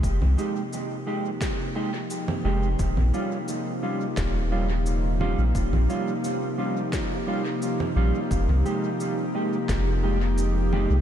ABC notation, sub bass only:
X:1
M:4/4
L:1/16
Q:1/4=87
K:Fm
V:1 name="Sub bass" clef=bass
F,,, C,, z12 F,,,2 | E,,, B,,, z6 E,,,6- E,,, B,,, | E,,, B,,, z12 B,,, z | F,,, C,, z6 F,,,6- F,,, C,, |]